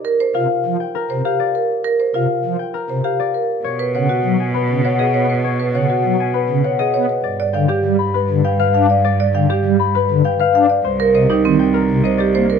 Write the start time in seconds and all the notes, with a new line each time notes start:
Already playing: A#4 D5 G5
0.05 A#4
0.20 C5
0.34 C3 F4 F5
0.66 F3
0.80 G5
0.95 A#4
1.10 C3 C5
1.25 G4 F5
1.40 D5
1.55 A#4
1.84 A#4
2.00 C5
2.14 C3 F4 F5
2.45 F3
2.59 G5
2.74 A#4
2.90 C3 C5
3.04 G4 F5
3.20 D5
3.34 A#4
3.64 B2 C#5
3.79 B4
3.95 C#3 C#5 F#5
4.09 F#4
4.25 F#3
4.40 G#5
4.54 B4
4.69 C#3
4.85 C#5 F#5
4.99 G#4 D#5
5.14 B3 C#5
5.30 B4
5.44 C#5
5.60 B4
5.75 C#3 C#5 F#5
5.90 F#4
6.05 F#3
6.20 G#5
6.34 B4
6.49 C#3
6.64 C#5 F#5
6.79 G#4 D#5
6.94 B3 C#5
7.09 B4
7.24 G2 D5
7.40 D5
7.53 D3 F5 G5
7.68 G4
7.85 G3
7.99 B5
8.14 B4
8.30 D3
8.45 F5 G5
8.59 B4 F5
8.75 D4 F5
8.90 D5
9.05 D5
9.20 D5
9.34 D3 F5 G5
9.50 G4
9.65 G3
9.79 B5
9.95 B4
10.11 D3
10.25 F5 G5
10.40 B4 F5
10.55 D4 F5
10.70 D5
10.85 C2 C5
11.00 A#4
11.15 C3 C5 D#5
11.30 D#4 G4
11.45 D#3 C4
11.59 G5
11.74 A#4
11.90 C3
12.04 C5 D#5
12.18 G4 D5
12.35 A#3 C5
12.50 A#4